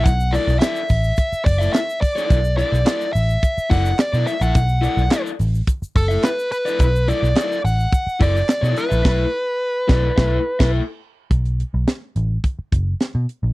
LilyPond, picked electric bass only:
\new Staff \with { instrumentName = "Picked electric bass" } { \clef bass \time 4/4 \key b \minor \tempo 4 = 107 b,,8. b,,16 r8 a,,8 r8 fis,,8 r4 | b,,8. b,,16 r8 a,,8 r8 fis,,8 r16 b,16 r16 ais,,16 | b,,8. b,,16 r8 a,,8 r8 fis,,8 r4 | b,,8. b,,16 r8 a,,8 r8 fis,,8 r16 b,16 r16 ais,,16 |
b,,8 r4 b,,8 b,,8 r16 b,,8 r8. | b,,8. b,,16 r8 a,,8 r8 fis,,8 r16 b,16 r16 ais,,16 | }